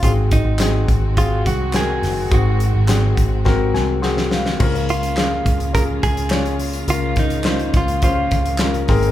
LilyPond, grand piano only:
<<
  \new Staff \with { instrumentName = "Grand piano" } { \time 4/4 \key des \major \tempo 4 = 105 <c' ges' aes'>4 <c' ges' aes'>4 <c' ges' aes'>4 <c' ges' bes'>4 | <c' ges' aes'>4 <c' ges' aes'>4 <c' ges' bes'>4 <c' ges' aes'>4 | <des' f' bes'>4 <des' f' aes'>4 <des' f' aes'>4 <des' f' des''>4 | <des' f' bes'>4 <des' f' c''>4 <des' f' c''>4 <des' f' bes'>8 <c' aes' bes'>8 | }
  \new Staff \with { instrumentName = "Grand piano" } { \clef bass \time 4/4 \key des \major aes,4. r2 r8 | aes,4. r4 aes''8 ges''8 f''8 | des4. r2 r8 | des4. r2 aes,8 | }
>>